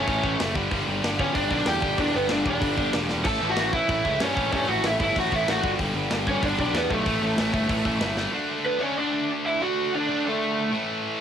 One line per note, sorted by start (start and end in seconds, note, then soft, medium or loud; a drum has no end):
0.00 0.37 C#4 medium
0.00 0.36 C#5 medium
0.06 0.19 A1 medium
0.06 0.23 A2 medium
0.06 0.22 E3 loud
0.06 0.21 A3 loud
0.06 kick loud
0.06 open hi-hat medium
0.23 0.35 A1 medium
0.23 0.38 A2 medium
0.23 0.38 E3 medium
0.23 0.39 A3 loud
0.23 kick medium
0.39 0.56 F#1 medium
0.39 0.54 A2 loud
0.39 0.54 E3 loud
0.39 0.54 A3 loud
0.39 snare loud
0.39 open hi-hat medium
0.54 0.67 G1 medium
0.54 0.72 G2 medium
0.54 0.70 D3 loud
0.54 0.71 G3 loud
0.54 kick loud
0.71 0.83 G1 loud
0.71 0.86 G2 medium
0.71 0.86 D3 loud
0.71 0.88 G3 loud
0.71 kick loud
0.71 open hi-hat medium
0.87 1.00 G1 loud
0.87 1.03 G2 medium
0.87 1.02 D3 medium
0.87 1.02 G3 loud
1.02 1.27 G1 loud
1.02 1.18 G2 medium
1.02 1.18 D3 loud
1.02 1.19 G3 loud
1.02 snare loud
1.02 open hi-hat medium
1.18 1.34 G2 medium
1.18 1.33 D3 loud
1.18 1.33 G3 loud
1.18 1.34 C#4 medium
1.18 1.34 C#5 medium
1.18 kick medium
1.34 1.47 G1 loud
1.34 1.48 G2 loud
1.34 1.48 D3 loud
1.34 1.48 G3 loud
1.34 1.50 D4 medium
1.34 1.50 D5 loud
1.34 kick loud
1.34 open hi-hat medium
1.49 1.62 B1 medium
1.49 1.65 G2 medium
1.49 1.64 D3 medium
1.49 1.63 G3 loud
1.49 1.66 D4 medium
1.49 1.67 D5 loud
1.49 kick medium
1.65 1.79 E2 loud
1.65 1.79 G2 loud
1.65 1.80 D3 loud
1.65 1.81 G3 loud
1.65 1.97 G4 medium
1.65 1.96 G5 loud
1.65 snare loud
1.65 open hi-hat medium
1.81 1.94 G1 medium
1.81 1.96 G2 medium
1.81 1.96 D3 medium
1.81 1.95 G3 medium
1.81 kick loud
1.96 2.10 E2 medium
1.96 2.10 G2 medium
1.96 2.11 D3 loud
1.96 2.12 G3 loud
1.96 kick loud
1.96 open hi-hat medium
2.00 2.14 D4 medium
2.00 2.15 D5 medium
2.12 2.26 G1 loud
2.12 2.28 G2 loud
2.12 2.28 D3 loud
2.12 2.27 G3 loud
2.16 2.30 B3 medium
2.16 2.31 B4 medium
2.28 2.42 G1 loud
2.28 2.43 G2 medium
2.28 2.43 D3 loud
2.28 2.43 G3 medium
2.28 2.45 D4 medium
2.28 2.46 D5 loud
2.28 snare loud
2.28 open hi-hat medium
2.44 2.58 E1 medium
2.44 2.59 G2 medium
2.44 2.59 D3 loud
2.44 2.59 G3 loud
2.44 kick medium
2.48 2.91 D4 medium
2.48 2.92 D5 medium
2.60 2.73 G1 medium
2.60 2.75 G2 medium
2.60 2.76 D3 loud
2.60 2.77 G3 loud
2.60 kick loud
2.60 open hi-hat medium
2.76 2.89 G1 medium
2.76 2.93 G2 medium
2.76 2.92 D3 medium
2.76 2.92 G3 medium
2.76 kick medium
2.93 3.25 E1 loud
2.93 3.08 G2 medium
2.93 3.09 D3 loud
2.93 3.09 G3 loud
2.93 snare loud
2.93 open hi-hat medium
3.09 3.24 G2 medium
3.09 3.25 D3 medium
3.09 3.25 G3 medium
3.09 snare medium
3.24 3.37 A1 medium
3.24 3.42 A2 loud
3.24 3.42 E3 loud
3.24 3.41 A3 loud
3.24 3.47 A4 medium
3.24 3.48 A5 loud
3.24 kick loud
3.24 crash loud
3.41 3.53 A1 loud
3.41 3.57 A2 medium
3.41 3.57 E3 medium
3.41 3.58 A3 loud
3.49 3.71 F#4 medium
3.49 3.74 F#5 loud
3.56 3.80 A1 loud
3.56 3.74 A2 medium
3.56 3.73 E3 loud
3.56 3.73 A3 loud
3.56 snare loud
3.56 open hi-hat medium
3.72 3.88 A2 medium
3.72 3.88 E3 loud
3.72 3.89 A3 loud
3.72 4.17 E4 medium
3.72 4.18 E5 medium
3.72 kick medium
3.88 4.00 A1 medium
3.88 4.06 A2 loud
3.88 4.05 E3 loud
3.88 4.05 A3 loud
3.88 kick loud
3.88 open hi-hat medium
4.05 4.17 C#2 medium
4.05 4.20 A2 medium
4.05 4.20 E3 medium
4.05 4.21 A3 medium
4.05 kick medium
4.20 4.32 G2 medium
4.20 4.35 A2 loud
4.20 4.35 E3 loud
4.20 4.35 A3 loud
4.20 4.50 C#4 medium
4.20 4.52 C#5 loud
4.20 snare loud
4.20 open hi-hat medium
4.36 4.49 A1 medium
4.36 4.50 A2 medium
4.36 4.50 E3 medium
4.36 4.51 A3 medium
4.36 kick loud
4.51 4.64 G2 loud
4.51 4.67 A2 loud
4.51 4.67 E3 loud
4.51 4.67 A3 loud
4.51 4.67 C#4 medium
4.51 kick loud
4.51 open hi-hat medium
4.56 4.69 C#5 medium
4.68 4.80 A1 medium
4.68 4.83 A2 medium
4.68 4.84 E3 medium
4.68 4.84 A3 medium
4.68 4.83 F#4 medium
4.68 4.84 F#5 loud
4.83 4.95 A1 loud
4.83 5.01 A2 loud
4.83 5.01 E3 medium
4.83 5.00 A3 loud
4.83 4.90 E4 medium
4.83 snare loud
4.83 open hi-hat medium
4.88 4.93 E5 loud
5.00 5.12 G1 medium
5.00 5.16 A2 medium
5.00 5.16 E3 medium
5.00 5.17 A3 loud
5.00 5.15 E4 medium
5.00 5.17 E5 medium
5.00 kick loud
5.16 5.28 A1 loud
5.16 5.32 A2 loud
5.16 5.32 E3 loud
5.16 5.32 A3 loud
5.16 5.32 F#4 medium
5.16 5.35 F#5 loud
5.16 kick loud
5.16 open hi-hat medium
5.32 5.44 A1 medium
5.32 5.48 A2 medium
5.32 5.49 E3 medium
5.32 5.49 A3 loud
5.32 5.48 E4 medium
5.32 5.49 E5 medium
5.32 kick medium
5.48 5.60 A1 medium
5.48 5.63 A2 loud
5.48 5.64 E3 loud
5.48 5.64 A3 loud
5.48 5.71 F#4 medium
5.48 5.71 F#5 medium
5.48 snare loud
5.48 open hi-hat medium
5.63 5.75 G1 medium
5.63 5.80 G2 medium
5.63 5.80 D3 medium
5.63 5.79 G3 loud
5.63 kick loud
5.79 5.91 G1 medium
5.79 5.95 G2 loud
5.79 5.95 D3 loud
5.79 5.95 G3 loud
5.79 kick loud
5.79 open hi-hat medium
5.95 6.07 G1 medium
5.95 6.12 G2 loud
5.95 6.11 D3 medium
5.95 6.11 G3 loud
6.11 6.34 G1 loud
6.11 6.26 G2 medium
6.11 6.27 D3 medium
6.11 6.27 G3 loud
6.11 snare loud
6.11 open hi-hat medium
6.27 6.43 G2 medium
6.27 6.42 D3 loud
6.27 6.42 G3 loud
6.27 6.43 C#4 medium
6.27 6.44 C#5 loud
6.27 kick medium
6.43 6.54 G1 medium
6.43 6.59 G2 medium
6.43 6.60 D3 loud
6.43 6.60 G3 loud
6.43 6.58 D4 loud
6.43 6.59 D5 loud
6.43 kick loud
6.43 open hi-hat medium
6.59 6.71 B1 medium
6.59 6.74 G2 medium
6.59 6.73 D3 medium
6.59 6.74 G3 loud
6.59 6.74 D4 medium
6.59 6.77 D5 loud
6.59 kick medium
6.74 6.86 E2 loud
6.74 6.90 G2 medium
6.74 6.90 D3 loud
6.74 6.91 G3 loud
6.74 6.92 B4 medium
6.74 snare loud
6.74 open hi-hat medium
6.78 6.91 B3 medium
6.90 7.02 B1 medium
6.90 7.06 G2 medium
6.90 7.05 D3 medium
6.90 7.06 G3 medium
6.90 7.98 A3 medium
6.90 7.98 A4 medium
6.90 kick loud
7.05 7.18 A1 loud
7.05 7.22 A2 loud
7.05 7.22 E3 loud
7.05 7.21 A3 loud
7.05 kick loud
7.05 open hi-hat medium
7.22 7.34 A1 loud
7.22 7.38 A2 medium
7.22 7.38 E3 loud
7.22 7.39 A3 loud
7.37 7.49 A1 loud
7.37 7.53 A2 medium
7.37 7.53 E3 medium
7.37 7.53 A3 loud
7.37 snare loud
7.37 open hi-hat medium
7.54 7.66 G1 medium
7.54 7.69 A2 medium
7.54 7.69 E3 medium
7.54 7.70 A3 loud
7.54 kick medium
7.69 7.81 A1 medium
7.69 7.86 A2 loud
7.69 7.86 E3 loud
7.69 7.85 A3 loud
7.69 kick loud
7.69 open hi-hat medium
7.85 7.97 A1 medium
7.85 8.00 A2 medium
7.85 8.01 E3 medium
7.85 8.02 A3 medium
7.85 kick medium
8.01 8.25 G1 loud
8.01 8.18 A2 medium
8.01 8.18 E3 loud
8.01 8.17 A3 loud
8.01 snare loud
8.01 open hi-hat medium
8.17 8.32 A2 medium
8.17 8.33 E3 medium
8.17 8.33 A3 medium
8.17 snare medium
8.32 8.80 D3 medium
8.32 8.80 A3 medium
8.32 8.77 D4 loud
8.66 8.81 B3 medium
8.66 8.80 B4 medium
8.79 9.59 D3 medium
8.79 9.61 A3 medium
8.79 9.59 D4 medium
8.79 8.97 C#5 medium
8.83 8.97 C#4 medium
8.97 9.28 D4 medium
8.97 9.29 D5 medium
9.46 9.61 E4 medium
9.46 9.62 E5 loud
9.60 10.07 D3 medium
9.60 10.09 A3 medium
9.60 10.06 D4 loud
9.60 9.91 F#4 medium
9.60 9.94 F#5 medium
9.95 10.24 D4 medium
9.95 10.24 D5 medium
10.07 10.70 D3 medium
10.07 10.72 A3 medium
10.07 10.71 D4 medium
10.28 10.71 A3 medium
10.28 10.71 A4 medium
10.71 11.20 A2 medium
10.71 11.21 E3 medium
10.71 11.21 A3 loud